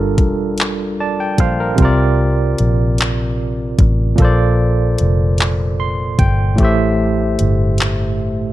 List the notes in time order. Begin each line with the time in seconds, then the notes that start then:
Already playing: G1 G3 D4 F4 A4 A#4
0.18 E1, kick, closed hi-hat
0.58 clap, closed hi-hat
1.00 D5 A5
1.20 G5
1.38 A#1 C5 F5, kick, closed hi-hat
1.60 A#4
1.75 C2 C3 C4, kick, closed hi-hat
1.80 F4 A#4
1.85 D5
2.58 A#1, closed hi-hat
2.98 clap, closed hi-hat
3.79 A1, kick, closed hi-hat
4.15 A#2 A#3, kick, closed hi-hat
4.20 A#1 A4 C5
4.25 D5
4.98 F1, closed hi-hat
5.38 clap, closed hi-hat
5.80 C6
6.19 G1 G5, kick, closed hi-hat
6.56 A1 A2 A3, kick, closed hi-hat
6.60 G4 C5
6.64 E5
7.39 G1, closed hi-hat
7.78 clap, closed hi-hat